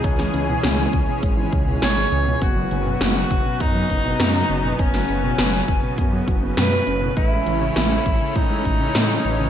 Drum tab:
HH |x-x-x-x-x-x-x-x-|x-x-x-x-x-x-x-x-|x-x-x-x-x-x-x-x-|x-x-x-x-x-x-x-x-|
SD |-o--o-------o---|----o-------o---|-o--o-------o---|----o-------o---|
BD |o-----o-o-o-----|o-----o-o-o-----|o-----o-o-o-----|o-----o-o-o-----|